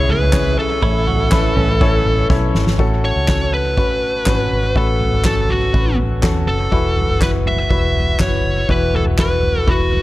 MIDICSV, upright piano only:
0, 0, Header, 1, 2, 480
1, 0, Start_track
1, 0, Key_signature, 3, "major"
1, 0, Tempo, 491763
1, 803, Time_signature, 4, 2, 24, 8
1, 9783, End_track
2, 0, Start_track
2, 0, Title_t, "Upright piano"
2, 0, Program_c, 0, 0
2, 0, Control_c, 0, 64, 127
2, 0, Note_on_c, 0, 49, 67
2, 0, Note_on_c, 0, 61, 76
2, 0, Note_on_c, 0, 64, 72
2, 0, Note_on_c, 0, 68, 68
2, 0, Note_on_c, 0, 73, 84
2, 0, Note_on_c, 0, 76, 83
2, 237, Note_off_c, 0, 61, 0
2, 239, Note_off_c, 0, 64, 0
2, 240, Note_off_c, 0, 68, 0
2, 242, Note_off_c, 0, 76, 0
2, 310, Note_on_c, 0, 61, 73
2, 316, Note_on_c, 0, 64, 67
2, 316, Note_on_c, 0, 68, 65
2, 321, Note_off_c, 0, 73, 0
2, 321, Note_on_c, 0, 73, 82
2, 714, Note_off_c, 0, 61, 0
2, 717, Note_off_c, 0, 64, 0
2, 717, Note_off_c, 0, 68, 0
2, 719, Note_off_c, 0, 73, 0
2, 794, Note_on_c, 0, 61, 71
2, 799, Note_on_c, 0, 64, 66
2, 801, Note_on_c, 0, 45, 64
2, 801, Note_on_c, 0, 69, 65
2, 805, Note_on_c, 0, 73, 77
2, 817, Control_c, 0, 64, 0
2, 822, Note_off_c, 0, 49, 0
2, 972, Control_c, 0, 64, 127
2, 1196, Note_off_c, 0, 61, 0
2, 1198, Note_off_c, 0, 64, 0
2, 1199, Note_off_c, 0, 69, 0
2, 1202, Note_off_c, 0, 73, 0
2, 1274, Note_on_c, 0, 61, 83
2, 1281, Note_on_c, 0, 64, 77
2, 1284, Note_on_c, 0, 69, 78
2, 1285, Note_on_c, 0, 71, 95
2, 1483, Note_off_c, 0, 45, 0
2, 1676, Note_off_c, 0, 61, 0
2, 1679, Note_off_c, 0, 64, 0
2, 1681, Note_off_c, 0, 69, 0
2, 1681, Note_off_c, 0, 71, 0
2, 1762, Note_on_c, 0, 61, 90
2, 1766, Note_on_c, 0, 64, 85
2, 1769, Note_on_c, 0, 69, 80
2, 1772, Note_on_c, 0, 73, 94
2, 2160, Note_off_c, 0, 61, 0
2, 2162, Note_off_c, 0, 64, 0
2, 2163, Note_off_c, 0, 69, 0
2, 2165, Note_off_c, 0, 73, 0
2, 2238, Note_on_c, 0, 61, 82
2, 2241, Note_on_c, 0, 64, 74
2, 2242, Note_on_c, 0, 69, 76
2, 2242, Note_on_c, 0, 76, 67
2, 2249, Note_on_c, 0, 73, 91
2, 2638, Note_off_c, 0, 61, 0
2, 2639, Note_off_c, 0, 64, 0
2, 2640, Note_off_c, 0, 69, 0
2, 2643, Note_off_c, 0, 73, 0
2, 2689, Note_off_c, 0, 76, 0
2, 2717, Note_on_c, 0, 61, 92
2, 2723, Note_on_c, 0, 66, 86
2, 2725, Note_on_c, 0, 45, 64
2, 2730, Note_on_c, 0, 69, 101
2, 2734, Control_c, 0, 64, 0
2, 2888, Control_c, 0, 64, 127
2, 3117, Note_off_c, 0, 61, 0
2, 3121, Note_off_c, 0, 66, 0
2, 3124, Note_off_c, 0, 69, 0
2, 3197, Note_on_c, 0, 61, 61
2, 3201, Note_on_c, 0, 66, 54
2, 3204, Note_on_c, 0, 69, 68
2, 3405, Note_off_c, 0, 45, 0
2, 3597, Note_off_c, 0, 61, 0
2, 3599, Note_off_c, 0, 66, 0
2, 3601, Note_off_c, 0, 69, 0
2, 3675, Note_on_c, 0, 61, 63
2, 3681, Note_on_c, 0, 66, 57
2, 3685, Note_on_c, 0, 71, 69
2, 4077, Note_off_c, 0, 61, 0
2, 4080, Note_off_c, 0, 66, 0
2, 4081, Note_off_c, 0, 71, 0
2, 4157, Note_on_c, 0, 61, 71
2, 4159, Note_on_c, 0, 66, 66
2, 4167, Note_on_c, 0, 71, 77
2, 4558, Note_off_c, 0, 61, 0
2, 4559, Note_off_c, 0, 66, 0
2, 4562, Note_off_c, 0, 71, 0
2, 4639, Note_on_c, 0, 61, 77
2, 4644, Note_on_c, 0, 66, 73
2, 4645, Note_on_c, 0, 57, 53
2, 4650, Note_on_c, 0, 71, 89
2, 5039, Note_off_c, 0, 61, 0
2, 5041, Note_off_c, 0, 66, 0
2, 5044, Note_off_c, 0, 71, 0
2, 5118, Note_on_c, 0, 61, 63
2, 5124, Note_on_c, 0, 66, 57
2, 5129, Note_on_c, 0, 69, 63
2, 5326, Note_off_c, 0, 57, 0
2, 5518, Note_off_c, 0, 61, 0
2, 5521, Note_off_c, 0, 66, 0
2, 5524, Note_off_c, 0, 69, 0
2, 5595, Note_on_c, 0, 61, 62
2, 5598, Note_on_c, 0, 66, 59
2, 5602, Note_on_c, 0, 71, 70
2, 5997, Note_off_c, 0, 61, 0
2, 5998, Note_off_c, 0, 66, 0
2, 6000, Note_off_c, 0, 71, 0
2, 6069, Note_on_c, 0, 61, 77
2, 6076, Note_on_c, 0, 66, 64
2, 6082, Note_on_c, 0, 69, 84
2, 6474, Note_off_c, 0, 61, 0
2, 6477, Note_off_c, 0, 66, 0
2, 6480, Note_off_c, 0, 69, 0
2, 6553, Note_on_c, 0, 64, 77
2, 6556, Note_on_c, 0, 52, 55
2, 6558, Note_on_c, 0, 66, 77
2, 6560, Note_on_c, 0, 71, 82
2, 6575, Control_c, 0, 64, 0
2, 6751, Control_c, 0, 64, 127
2, 6956, Note_off_c, 0, 64, 0
2, 6958, Note_off_c, 0, 66, 0
2, 6959, Note_off_c, 0, 71, 0
2, 7030, Note_on_c, 0, 64, 64
2, 7037, Note_on_c, 0, 66, 57
2, 7039, Note_on_c, 0, 71, 71
2, 7241, Note_off_c, 0, 52, 0
2, 7434, Note_off_c, 0, 64, 0
2, 7438, Note_off_c, 0, 66, 0
2, 7439, Note_off_c, 0, 71, 0
2, 7512, Note_on_c, 0, 64, 62
2, 7517, Note_on_c, 0, 66, 58
2, 7523, Note_on_c, 0, 71, 74
2, 7915, Note_off_c, 0, 64, 0
2, 7918, Note_off_c, 0, 66, 0
2, 7921, Note_off_c, 0, 71, 0
2, 7995, Note_on_c, 0, 64, 62
2, 7998, Note_on_c, 0, 66, 59
2, 8003, Note_on_c, 0, 71, 68
2, 8397, Note_off_c, 0, 64, 0
2, 8398, Note_off_c, 0, 66, 0
2, 8401, Note_off_c, 0, 71, 0
2, 8479, Note_on_c, 0, 64, 77
2, 8483, Note_on_c, 0, 52, 53
2, 8485, Note_on_c, 0, 66, 70
2, 8487, Note_on_c, 0, 71, 82
2, 8879, Note_off_c, 0, 64, 0
2, 8882, Note_off_c, 0, 66, 0
2, 8883, Note_off_c, 0, 71, 0
2, 8958, Note_on_c, 0, 64, 62
2, 8962, Note_on_c, 0, 66, 55
2, 8970, Note_on_c, 0, 71, 64
2, 9165, Note_off_c, 0, 52, 0
2, 9359, Note_off_c, 0, 64, 0
2, 9361, Note_off_c, 0, 66, 0
2, 9365, Note_off_c, 0, 71, 0
2, 9436, Note_on_c, 0, 64, 60
2, 9439, Note_on_c, 0, 66, 54
2, 9447, Note_on_c, 0, 71, 70
2, 9783, Note_off_c, 0, 64, 0
2, 9783, Note_off_c, 0, 66, 0
2, 9783, Note_off_c, 0, 71, 0
2, 9783, End_track
0, 0, End_of_file